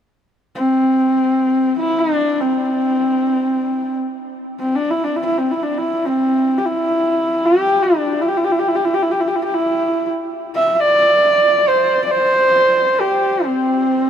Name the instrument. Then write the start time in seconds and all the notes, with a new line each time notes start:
horsehead fiddle
0.55 C4
1.79 E4
1.99 D4
2.41 C4
4.59 C4
4.75 D4
4.91 E4
5.04 D4
5.16 E4
5.25 E4
5.38 C4
5.51 E4
5.63 D4
5.78 E4
6.06 C4
6.58 G4
6.66 E4
7.45 G4
7.82 D4
8.21 E4
8.28 G4
8.37 E4
8.45 G4
8.52 E4
8.59 G4
8.68 E4
8.76 G4
8.85 E4
8.94 G4
9.03 E4
9.11 G4
9.20 E4
9.28 G4
9.36 E4
9.43 G4
9.54 E4
10.56 E5
10.74 E5
10.81 D5
11.68 C5
12.04 D5
12.11 C5
13.00 G4
13.45 C4